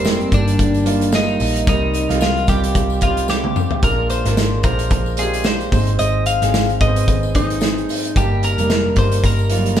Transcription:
Already playing: picked electric bass F1, grand piano G2 G3 A#3 D#4 A#4, clean electric guitar C4
0.05 snare, tambourine
0.20 closed hi-hat
0.32 picked electric bass G1, grand piano D#3 G3 A#3 G4, clean electric guitar D4, kick, closed hi-hat, tambourine
0.47 closed hi-hat, tambourine
0.59 picked electric bass G1, kick, closed hi-hat
0.74 closed hi-hat, tambourine
0.85 grand piano G3 A#3 D#4 F4, closed hi-hat, tambourine
1.01 closed hi-hat, tambourine
1.12 clean electric guitar D#4, snare, tambourine
1.28 tambourine
1.40 picked electric bass A#1, open hi-hat, tambourine
1.56 closed hi-hat
1.67 picked electric bass C2, grand piano C3 G3 C4 D#4 A#4, clean electric guitar D#4, kick, closed hi-hat, tambourine
1.94 closed hi-hat, tambourine
2.09 picked electric bass C2, grand piano G3 C4 D#4 F4, snare, closed hi-hat, tambourine
2.21 clean electric guitar F4, snare, tambourine
2.37 closed hi-hat
2.47 picked electric bass C2, grand piano G3 C4 D#4 F4, clean electric guitar G4, kick, closed hi-hat, tambourine
2.63 closed hi-hat, tambourine
2.75 picked electric bass C2, kick, closed hi-hat
2.90 tambourine
3.01 grand piano G3 C4 D#4 G4, clean electric guitar F4, kick, closed hi-hat, tambourine
3.17 closed hi-hat, tambourine
3.28 clean electric guitar G4, snare, tambourine
3.44 high tom
3.56 mid tom, tambourine
3.71 floor tom
3.83 picked electric bass A#1, grand piano A#2 G#3 D4 F4 A#4, clean electric guitar A#4, kick, closed hi-hat, tambourine
4.10 clean electric guitar C5, closed hi-hat, tambourine
4.25 picked electric bass G#1, grand piano G#3 D4 F4 A#4, snare, closed hi-hat, tambourine
4.37 snare, tambourine
4.63 picked electric bass A#1, grand piano G#3 D4 F4 C5, clean electric guitar A#4, kick, closed hi-hat, tambourine
4.79 closed hi-hat
4.91 picked electric bass A#1, kick, closed hi-hat
5.06 tambourine
5.17 grand piano G#3 D4 F4 G4, clean electric guitar G#4, closed hi-hat, tambourine
5.34 closed hi-hat, tambourine
5.44 clean electric guitar C5, snare, tambourine
5.61 closed hi-hat, tambourine
5.72 picked electric bass G#1, grand piano G#2 G#3 C4 D#4 C5, kick, open hi-hat, tambourine
5.87 closed hi-hat
5.99 picked electric bass G#1, clean electric guitar D#5, closed hi-hat, tambourine
6.26 clean electric guitar F5, closed hi-hat, tambourine
6.41 picked electric bass G#1, grand piano G#3 C4 D#4 G#4, snare, closed hi-hat, tambourine
6.54 snare, tambourine
6.69 closed hi-hat
6.80 picked electric bass G#1, grand piano G#3 C4 D#4 B4, clean electric guitar D#5, kick, closed hi-hat, tambourine
6.87 grand piano C5
6.96 closed hi-hat
7.08 picked electric bass G#1, kick, closed hi-hat
7.23 tambourine
7.35 grand piano G#3 C4 D#4 C5, clean electric guitar D#4, kick, closed hi-hat, tambourine
7.50 closed hi-hat
7.61 snare, tambourine
7.78 closed hi-hat
7.89 open hi-hat, tambourine
8.05 closed hi-hat
8.16 picked electric bass G1, grand piano G2 G3 A#3 D#4 A#4, clean electric guitar G4, kick, closed hi-hat, tambourine
8.43 clean electric guitar A#4, closed hi-hat, tambourine
8.58 picked electric bass F1, grand piano G3 A#3 D#4 A#4, closed hi-hat, tambourine
8.70 snare, tambourine
8.96 picked electric bass G1, grand piano G3 A#3 D#4 A#4, clean electric guitar C5, kick, closed hi-hat, tambourine
9.12 closed hi-hat, tambourine
9.24 picked electric bass G1, clean electric guitar A#4, kick, closed hi-hat
9.39 tambourine
9.50 grand piano F#3 A#3 D#4 F4, closed hi-hat, tambourine
9.57 grand piano G3
9.66 closed hi-hat, tambourine
9.76 snare, tambourine

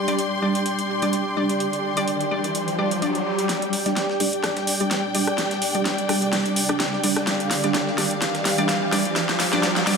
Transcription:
Already playing: string section G3 D4 D5 C6, ambient pad G4 D5 G5, riser
0.08 synth stab G3 D4 D5, closed hi-hat
0.19 closed hi-hat
0.42 synth stab G3 D4 D5
0.55 closed hi-hat
0.66 closed hi-hat
0.79 closed hi-hat
1.02 synth stab G3 D4 D5, closed hi-hat
1.13 closed hi-hat
1.37 synth stab G3 D4 D5
1.50 closed hi-hat
1.60 closed hi-hat
1.73 closed hi-hat
1.97 synth stab G3 D4 D5, closed hi-hat
2.08 closed hi-hat
2.21 closed hi-hat
2.31 synth stab G3 D4 D5
2.44 closed hi-hat
2.55 closed hi-hat
2.68 closed hi-hat
2.78 synth stab G3 D4 D5
2.91 closed hi-hat
3.02 synth stab G3 D4 D5, closed hi-hat
3.15 closed hi-hat
3.39 closed hi-hat
3.49 string section G3 D4 D5 G5, snare, closed hi-hat, riser
3.62 closed hi-hat
3.73 closed hi-hat, open hi-hat
3.86 synth stab G3 D4 D5, snare, closed hi-hat
3.97 snare, closed hi-hat
4.10 snare
4.20 synth stab G3 D4 D5, closed hi-hat, open hi-hat
4.33 closed hi-hat
4.44 cross-stick, snare, closed hi-hat
4.57 snare, closed hi-hat
4.67 closed hi-hat, open hi-hat
4.80 synth stab G3 D4 D5, closed hi-hat
4.91 snare, closed hi-hat
5.15 synth stab G3 D4 D5, closed hi-hat, open hi-hat
5.27 cross-stick, closed hi-hat
5.38 snare, closed hi-hat
5.51 snare, closed hi-hat
5.62 closed hi-hat, open hi-hat
5.75 synth stab G3 D4 D5, closed hi-hat
5.85 snare, closed hi-hat
5.98 closed hi-hat
6.09 synth stab G3 D4 D5, cross-stick, closed hi-hat, open hi-hat
6.22 closed hi-hat
6.33 snare, closed hi-hat, open hi-hat
6.46 closed hi-hat
6.56 closed hi-hat, open hi-hat
6.69 synth stab G3 D4 D5, cross-stick, closed hi-hat
6.80 snare, closed hi-hat
6.93 snare
7.04 synth stab G3 D4 D5, closed hi-hat, open hi-hat
7.16 cross-stick, snare, closed hi-hat
7.27 string section F5, snare, closed hi-hat
7.40 closed hi-hat
7.51 snare, closed hi-hat, open hi-hat
7.64 synth stab G3 D4 D5, snare, closed hi-hat
7.74 snare, closed hi-hat
7.87 snare
7.98 synth stab G3 D4 D5, snare, closed hi-hat, open hi-hat
8.11 closed hi-hat
8.22 snare, closed hi-hat
8.35 snare, closed hi-hat
8.45 snare, closed hi-hat, open hi-hat
8.58 synth stab G3 D4 D5, closed hi-hat
8.69 snare, closed hi-hat
8.92 synth stab G3 D4 D5, snare, closed hi-hat, open hi-hat
9.05 closed hi-hat
9.16 snare, closed hi-hat
9.29 snare, closed hi-hat
9.40 snare, closed hi-hat, open hi-hat
9.53 synth stab G3 D4 D5, snare, closed hi-hat
9.63 snare, closed hi-hat
9.76 snare, closed hi-hat
9.87 synth stab G3 D4 D5, snare, closed hi-hat, open hi-hat
9.93 snare, closed hi-hat

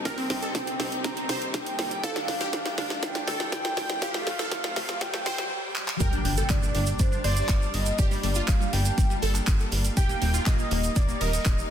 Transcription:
Already playing: string section C3 G3 A#3 D#4, synth texture G4 G5, riser
0.05 analog synth bass C2, string section C4, synth pluck A#4, soft synth lead G5, kick, snare, closed hi-hat
0.18 synth pluck C4, open hi-hat
0.30 analog synth bass C2, synth pluck C4, snare, open hi-hat
0.42 synth pluck A4, closed hi-hat
0.55 analog synth bass C2, synth pluck C4, kick, snare, closed hi-hat
0.67 synth pluck C4, closed hi-hat
0.80 analog synth bass C2, synth pluck C4, snare, open hi-hat
0.92 closed hi-hat
1.04 analog synth bass C2, synth pluck C4, soft synth lead A#5, kick, snare, closed hi-hat
1.17 synth pluck C4, closed hi-hat
1.29 analog synth bass C2, synth pluck C5, snare, open hi-hat
1.42 closed hi-hat
1.54 analog synth bass C2, soft synth lead G5, kick, snare, closed hi-hat
1.66 closed hi-hat
1.79 analog synth bass C2, snare, open hi-hat
1.91 closed hi-hat
2.03 analog synth bass D2, string section A3 D4, synth pluck A4, soft synth lead F5, kick, snare, closed hi-hat
2.16 synth pluck D4, snare, closed hi-hat
2.28 analog synth bass D2, synth pluck D4, snare, open hi-hat
2.41 synth pluck G4, snare, closed hi-hat
2.53 analog synth bass D2, synth pluck D4, kick, snare, closed hi-hat
2.65 synth pluck D4, snare, closed hi-hat
2.78 analog synth bass D2, synth pluck D4, snare, open hi-hat
2.90 snare, closed hi-hat
3.03 analog synth bass D2, synth pluck D4, soft synth lead G5, kick, snare, closed hi-hat
3.15 synth pluck D4, snare, closed hi-hat
3.27 analog synth bass D2, synth pluck A4, snare, open hi-hat
3.40 snare, closed hi-hat
3.52 analog synth bass D2, soft synth lead G5, kick, snare, closed hi-hat
3.65 snare, closed hi-hat
3.77 analog synth bass D2, snare, open hi-hat
3.90 snare, closed hi-hat
4.02 analog synth bass D2, string section C4, synth pluck G4, soft synth lead F5, kick, snare, closed hi-hat
4.14 synth pluck A3, snare, open hi-hat
4.27 analog synth bass D2, synth pluck A3, snare, open hi-hat
4.39 synth pluck A4, snare, closed hi-hat
4.51 analog synth bass D2, synth pluck A3, kick, snare, closed hi-hat
4.64 synth pluck A3, snare, closed hi-hat
4.76 analog synth bass D2, synth pluck A3, snare, open hi-hat
4.89 snare, closed hi-hat
5.01 analog synth bass D2, synth pluck A3, soft synth lead G5, kick, snare, closed hi-hat
5.14 synth pluck A3, snare, closed hi-hat
5.26 analog synth bass D2, synth pluck C5, snare, open hi-hat
5.38 snare, closed hi-hat
5.76 clap
5.88 clap
6.00 analog synth bass G1, string section G3 A#3 D4, synth texture F4 F5, synth pluck A#4, soft synth lead G5, kick, closed hi-hat, impact, shaker
6.13 synth pluck D4, closed hi-hat, shaker
6.25 analog synth bass G1, synth pluck D4, closed hi-hat, open hi-hat
6.37 synth pluck A4, snare, closed hi-hat, shaker
6.50 analog synth bass G1, synth pluck D4, soft synth lead D5, kick, snare, clap, closed hi-hat, shaker
6.62 synth pluck D4, shaker
6.75 analog synth bass G1, synth pluck D4, closed hi-hat, open hi-hat
6.86 closed hi-hat, shaker
6.99 analog synth bass G1, synth pluck D4, soft synth lead C5, kick, closed hi-hat, shaker
7.12 synth pluck D4, shaker
7.24 analog synth bass G1, synth pluck C5, soft synth lead D5, open hi-hat
7.37 closed hi-hat, shaker
7.49 analog synth bass G1, kick, snare, clap, closed hi-hat, shaker
7.62 shaker
7.74 analog synth bass G1, soft synth lead D#5, closed hi-hat, open hi-hat
7.86 closed hi-hat, shaker
7.98 analog synth bass G1, synth pluck G4, soft synth lead D5, kick, closed hi-hat, shaker
8.11 synth pluck G3, snare, open hi-hat, shaker
8.23 analog synth bass G1, synth pluck G3, closed hi-hat, open hi-hat
8.35 synth pluck F4, closed hi-hat, shaker
8.48 analog synth bass G1, synth pluck G3, soft synth lead F5, kick, snare, clap, closed hi-hat, shaker
8.61 synth pluck G3, shaker
8.73 analog synth bass G1, synth pluck G3, soft synth lead G5, closed hi-hat, open hi-hat
8.85 closed hi-hat, shaker
8.98 analog synth bass G1, synth pluck G3, kick, closed hi-hat, shaker
9.10 synth pluck G3, shaker
9.22 analog synth bass G1, synth pluck A4, closed hi-hat, open hi-hat
9.35 snare, clap, closed hi-hat, shaker
9.47 analog synth bass G1, kick, snare, clap, closed hi-hat, shaker
9.60 closed hi-hat, shaker
9.72 analog synth bass G1, snare, closed hi-hat, open hi-hat
9.84 closed hi-hat, shaker
9.97 analog synth bass D#1, string section G3 D#4, synth pluck G4, soft synth lead G5, kick, closed hi-hat, shaker
10.09 synth pluck A#3, closed hi-hat, shaker
10.22 analog synth bass D#1, synth pluck A#3, closed hi-hat, open hi-hat
10.34 synth pluck F4, snare, closed hi-hat, shaker
10.46 analog synth bass D#1, synth pluck A#3, soft synth lead D#5, kick, snare, clap, closed hi-hat, shaker
10.59 synth pluck A#3, shaker
10.71 analog synth bass D#1, synth pluck A#3, closed hi-hat, open hi-hat
10.84 closed hi-hat, shaker
10.96 analog synth bass D#1, synth pluck A#3, soft synth lead D5, kick, closed hi-hat, shaker
11.08 synth pluck A#3, shaker
11.21 analog synth bass D#1, synth pluck A#4, soft synth lead D#5, open hi-hat
11.33 closed hi-hat, shaker
11.45 analog synth bass D#1, kick, snare, clap, closed hi-hat, shaker
11.59 shaker

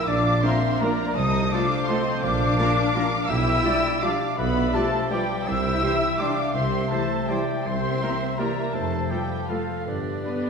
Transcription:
Already playing: harp F3 F4 A#4 D5 F5 A#5
0.00 harp D4
0.07 tuba A#1, double bass section A#1, harp A#2, cello section D4, oboe D5, clarinet D5, violin section F5 D6, flute D6
0.16 harp F3
0.26 harp D4
0.35 harp F4
0.43 french horn section F3 D4, viola section A#3 D4, cello section C4, trumpet section A#4, harp A#4, oboe C5, violin section E5 C6, clarinet F5, flute C6
0.54 harp D5
0.73 harp A#5
0.80 french horn section F3 D4, cello section A#3, viola section A#3 D4, oboe A#4, trumpet section A#4, violin section D5 A#5, harp F5, flute A#5
0.99 harp A#4
1.07 harp D4
1.15 tuba C2, double bass section C2, harp C3, cello section D#4, clarinet C5, oboe D#5, violin section A5 D#6, flute D#6
1.24 harp A3
1.33 harp C4
1.43 harp F4
1.51 french horn section F3 F4, viola section A3 F4, cello section D4, trumpet section A4, harp A4, oboe D5, violin section F5 D6, flute D6
1.62 harp C5
1.71 harp F5
1.79 harp A5
1.87 french horn section F3 F4, viola section A3 F4, cello section C4, trumpet section A4, oboe C5, violin section D#5 C6, harp F5, flute C6
2.06 harp A4
2.15 harp C4
2.22 double bass section A#1, tuba A#1, harp A#2, cello section D4, oboe D5, violin section F5 D6, flute D6
2.32 harp F3
2.58 french horn section F3 F4, viola section A#3 F4, trumpet section A#4, harp A#4, clarinet D5
2.77 harp F5
2.94 french horn section F3 F4, viola section A#3 F4, trumpet section A#4, clarinet F5
3.04 harp D5
3.12 harp A#4
3.21 harp D4
3.28 tuba B1, double bass section B1, harp B2, cello section E4, oboe E5, clarinet E5, violin section G5 E6, flute E6
3.38 harp B3
3.46 harp D4
3.64 french horn section F3 G4, viola section G3 F4, harp G4, trumpet section D5, clarinet D5
3.93 harp G5
4.01 french horn section F3 G4, viola section G3 F4, cello section D4, oboe D5, trumpet section D5, harp F5, clarinet F5, violin section F5 D6, flute D6
4.21 harp G4
4.29 harp D4
4.37 double bass section B1, tuba B1, harp B2, cello section B3, oboe B4, violin section D5 B5, clarinet E5, flute B5
4.55 harp D4
4.64 harp F4
4.73 french horn section F3 G4, viola section G3 F4, cello section A3, oboe A4, violin section C5 A5, trumpet section D5, flute A5
4.92 harp F5
5.09 french horn section F3 G4, cello section G3, viola section G3 F4, oboe G4, violin section B4 G5, clarinet D5, trumpet section D5, harp F5, flute G5
5.29 harp G4
5.39 harp D4
5.46 tuba C2, double bass section C2, harp C3, cello section E4, clarinet C5, oboe E5, violin section G5 E6, flute E6
5.56 harp G3
5.65 harp C4
5.73 harp E4
5.82 french horn section E3 G4, viola section G3 E4, harp G4, trumpet section C5, clarinet E5
6.02 harp E5
6.11 harp G5
6.18 french horn section E3 G4, viola section G3 E4, cello section D4, trumpet section C5, oboe D5, harp E5, violin section F5 D6, clarinet G5, flute D6
6.37 harp G4
6.46 harp C4
6.54 tuba C2, double bass section C2, harp C3, cello section C4, oboe C5, clarinet E5, violin section E5 C6, flute C6
6.63 harp G3
6.72 harp C4
6.82 harp E4
6.90 french horn section E3 G4, viola section G3 E4, cello section A3, harp G4, oboe A4, trumpet section C5, violin section C5 A5, flute A5
7.10 harp E5
7.19 harp G5
7.28 french horn section E3 G4, cello section G3, viola section G3 E4, oboe G4, violin section C5 G5, trumpet section C5, clarinet D5, harp E5, flute G5
7.47 harp G4
7.57 harp C4
7.65 tuba C2, double bass section C2, harp C3, cello section C4, oboe C5, clarinet C5, violin section E5 C6, flute C6
7.74 harp G3
7.83 harp A#3
7.92 harp E4
8.01 french horn section E3 G4, viola section A#3 E4, harp G4, trumpet section A#4, clarinet E5
8.20 harp E5
8.29 harp G5
8.37 french horn section E3 G4, cello section A#3, viola section A#3 E4, trumpet section A#4, oboe A#4, clarinet D5, harp E5, violin section E5 A#5, flute A#5
8.47 harp A#4
8.56 harp G4
8.64 harp A#3
8.72 tuba F1, harp F2, double bass section F2, cello section A3, oboe A4, violin section C5 A5, clarinet C5, flute A5
8.82 harp C3
8.91 harp A3
9.00 harp F4
9.09 french horn section F3 F4, cello section G3, viola section A3 F4, oboe G4, harp A4, trumpet section A4, violin section B4 G5, flute G5
9.19 harp F4
9.29 harp F5
9.39 harp A5
9.48 french horn section F3 F4, cello section F3, viola section A3 F4, oboe F4, violin section A4 F5, clarinet A4, trumpet section A4, harp F5, flute F5
9.58 harp A4
9.68 harp F4
9.78 harp A3
9.86 tuba G1, harp G2, double bass section G2, cello section D3, oboe D4, violin section G4 D5, clarinet B4, flute D5
9.95 harp D3
10.06 harp B3
10.15 harp D4
10.25 french horn section D3 G4, viola section B3, harp G4, trumpet section B4
10.36 harp B4

